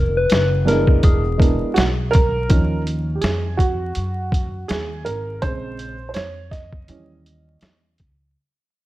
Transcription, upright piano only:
0.65 0.73 G3 medium
0.65 1.20 B3 medium
0.65 1.20 D4 medium
0.65 1.20 E4 medium
0.65 1.21 A#4 medium
0.72 1.23 G#3 medium
1.38 1.84 G#3 medium
1.38 1.84 B3 medium
1.38 1.84 D4 medium
1.38 1.85 E4 medium
1.38 1.85 A#4 medium
1.74 1.83 F#4 medium
2.11 2.81 A#4 loud
2.49 3.55 D#3 soft
2.49 3.55 F3 soft
2.49 3.55 C#4 medium
3.15 3.22 G4 medium
3.21 3.60 G#4 medium
3.57 4.71 F#4 medium
4.68 5.03 G#4 medium
5.05 5.43 A#4 medium
5.42 5.93 C#3 soft
5.42 5.94 G#3 soft
5.42 5.94 C4 medium
5.42 6.07 C5 medium
6.09 6.15 C5 medium
6.14 6.49 C#5 loud
6.51 7.94 D#5 medium
6.88 7.94 E3 medium
6.88 7.95 G3 soft
6.88 7.95 C#4 medium

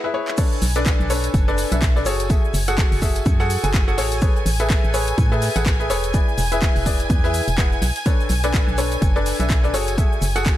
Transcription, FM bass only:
0.62 0.94 B1 loud
1.00 1.29 B1 medium
1.34 1.65 F#1 loud
1.72 2.07 B1 loud
2.06 2.37 F#1 loud
2.54 2.85 F#1 loud
2.92 3.21 F#1 medium
3.26 3.57 F#2 loud
3.64 3.99 F#1 loud
3.98 4.29 A1 loud
4.46 4.77 A1 loud
4.84 5.13 A1 medium
5.18 5.50 A2 loud
5.56 5.92 A1 loud
5.90 6.22 E1 loud
6.38 6.69 E1 loud
6.76 7.05 E1 medium
7.10 7.41 E2 loud
7.48 7.77 E1 loud
7.82 7.92 B1 loud
8.30 8.61 B1 loud
8.68 8.97 B1 medium
9.02 9.33 F#1 loud
9.40 9.75 B1 loud
9.74 10.05 F#1 loud
10.22 10.53 F#1 loud

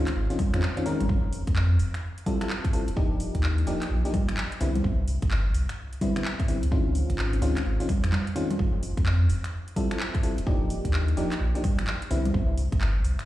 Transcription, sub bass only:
0.15 0.27 G#1 medium
0.54 0.61 F2 medium
1.00 1.08 G#1 medium
1.09 1.43 F1 loud
1.47 1.77 F2 loud
1.79 1.91 F1 medium
2.88 3.30 D#1 medium
3.35 3.64 D#2 loud
3.67 3.79 D#1 medium
3.90 4.02 A#1 medium
4.29 4.36 G1 medium
4.61 4.81 C2 medium
4.84 5.18 C2 loud
5.22 5.52 G1 loud
5.54 5.66 C2 medium
6.63 7.05 C#2 medium
7.10 7.39 G#1 loud
7.42 7.54 C#2 medium
7.65 7.77 G#1 medium
8.04 8.11 F2 medium
8.59 8.93 F1 loud
8.97 9.27 F2 loud
9.29 9.41 F1 medium
10.38 10.80 D#1 medium
10.85 11.14 D#2 loud
11.17 11.29 D#1 medium
11.40 11.52 A#1 medium
11.79 11.86 G1 medium
12.11 12.31 C2 medium
12.34 12.68 C2 loud
12.72 13.02 G1 loud
13.04 13.16 C2 medium

